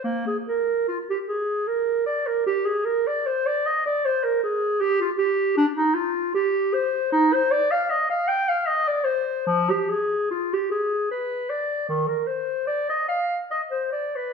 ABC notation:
X:1
M:3/4
L:1/16
Q:1/4=76
K:Bbmix
V:1 name="Clarinet"
B, A B2 F G A2 B2 d B | G A B d c d e d c B A2 | G F G2 D E F2 G2 c2 | [K:Cm] E c d f e f g f e d c2 |
F, G A2 F G A2 =B2 d2 | E, B c2 d e f2 e c d =B |]